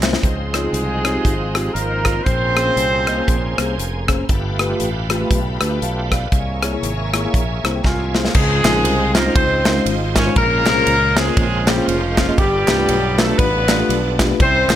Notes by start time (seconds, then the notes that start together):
Already playing: C2 C#5 E5 A#5 C6
0.03 A#3 C#4 E4 C5, snare, clap
0.13 snare
0.22 C#2 C#3 E3 G#3 C4 D#4 F4 G#4 C5 D#5 F5 C6, kick, closed hi-hat
0.28 F3
0.54 C4 D#4 F4 C#5, cross-stick, closed hi-hat
0.64 C4 D#4 F4 G#4
0.73 C2, closed hi-hat
1.04 C4 D#4 F4 C#5, cross-stick, closed hi-hat
1.14 C4 D#4 F4 G4
1.25 G#1, kick, closed hi-hat
1.55 C4 D#4 F4 G4, cross-stick, closed hi-hat
1.73 G#1 A#3 D#4 F4 A#4, closed hi-hat
2.05 C4 D#4 F4 C5, kick, cross-stick, closed hi-hat
2.24 A#1 A#2 A#3 C4 C#4 F4 G#4 C5 G#5 A#5, kick, closed hi-hat
2.57 A#3 C#4 G#4 C5, cross-stick, closed hi-hat
2.66 A#3 C#4 G#4 C5
2.76 C2, closed hi-hat
3.07 A#3 C#4 G#4 D#5, cross-stick, closed hi-hat
3.17 A#3 C#4 G#4 C5
3.28 A#1, kick, closed hi-hat
3.58 C2 A#3 C#4 G#4 C5, cross-stick, closed hi-hat
3.78 F1 G#5, closed hi-hat
4.08 A#3 C#4 G#4 C5, kick, cross-stick, closed hi-hat
4.29 G1 G2 A3 F4 G4 A4 F5 G5 A5 B5, kick, closed hi-hat
4.35 B4
4.59 A3 F4 G4 B4, cross-stick, closed hi-hat
4.70 A3 F4 G4 B4
4.80 A1, closed hi-hat
5.10 A3 F4 G4 B4, cross-stick, closed hi-hat
5.20 A3 F4 G4 B4
5.31 B1, kick, closed hi-hat
5.61 D2 A3 F4 G4 B4, cross-stick, closed hi-hat
5.82 B1 F5 A5, closed hi-hat
6.12 D5 F5, kick, cross-stick, closed hi-hat
6.32 C2 C3 A#3 G#4 C5 E5 G#5 A#5 C#6, kick, closed hi-hat
6.38 C#5
6.63 A#3 E4 G#4 C#5, cross-stick, closed hi-hat
6.73 A#3 E4 G#4 C#5
6.83 G#1, closed hi-hat
7.13 A#3 E4 G#4 C#5, cross-stick, closed hi-hat
7.25 A#3 E4 G#4 C#5 F5
7.34 A#1 E5, kick, closed hi-hat
7.64 C2 A#3 E4 G#4 C5, cross-stick, closed hi-hat
7.76 G5
7.84 C2 F3 G#3 A#3 F4 G#5, kick, snare
8.15 A#3 E4 G#4 C5, snare
8.25 snare
8.34 C#2 C#3 G#3 C4 D#4 F4 G#4 C5, kick, crash
8.64 A#1 G#3 C#4 D#4 F4 C5, snare, clap, ride
8.76 G#3 C#4 D#4 F4 A#4
8.85 C2, ride
9.14 G#3 A#3 C#4 D#4 F4 A#4 C5, snare, clap, ride
9.26 G#3 C#4 D#4 F4 C5
9.35 C#2 C4 D#4 F4 C5, kick, ride
9.65 G#3 C#4 D#4 F4 A#4, snare, clap, ride
9.76 G#3 C#4 D#4 F4 C5
9.86 G#1, ride
10.16 G#3 C#4 D#4 F4 A#4 C#5, kick, snare, clap, ride
10.27 G#3 C#4 D#4 F4 C5
10.36 A#1 A#2 C#3 G#3 A#3 C#4 F4 A#4 C5, kick, ride
10.66 C2 A#3 C#4 F4 G#4 C5, snare, clap, ride
10.76 A#3 C#4 F4 G#4 C5
10.87 C#2, ride
11.16 G#3 A#3 C4 C#4 F4 G#4 C5, snare, clap, ride
11.27 A#3 F4 G#4 A#4
11.37 A#1, kick, ride
11.67 G3 A#3 C#4 F4 G4 G#4 C5, snare, clap, ride
11.78 A#3 C#4 F4 G#4 C5
11.87 F1 F3 G#3 C#4 F4, ride
12.17 A#3 C#4 F4 G#4 C5, kick, snare, clap, ride
12.28 A#3 C#4 F4 G#4 D#5
12.38 G1 G2 G3 B3 D4 F4 G4 A4, kick, ride
12.68 C2 A3 D4 F4 G4 B4, snare, clap, ride
12.78 A3 D4 F4 G4 B4
12.88 B1, ride
13.18 A3 D4 F4 G4 A4 B4, snare, clap, ride
13.28 A3 D4 F4 G4 B4
13.38 A1 B3 D4 F4 B4, kick, ride
13.69 A3 D4 F4 G4 D5, snare, clap, ride
13.79 A3 D4 F4 G4 A4
13.89 B1, ride
14.19 A3 D4 F4 G4 B4, kick, snare, clap, ride
14.30 A3 D4 F4 G4 B4
14.39 C2 C3 G3 C4 C#4 E4 G4 A#4 C5, kick, ride
14.68 A#1 G#3 C4 C#4 E4 A#4, snare, clap, ride